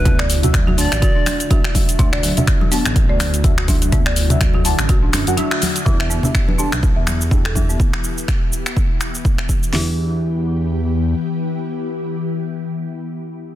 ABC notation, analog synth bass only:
X:1
M:4/4
L:1/16
Q:"Swing 16ths" 1/4=124
K:Em
V:1 name="Analog synth bass" clef=bass
D,,6- D,, A,,,2 z6 z | D,,3 z4 A,,,2 D,,6- D,,- | D,,6- D,, A,,,3 F,, F,, z4 | E,,3 z4 B,,,2 E,,6- E,, |
z16 | E,,12 z4 | z16 |]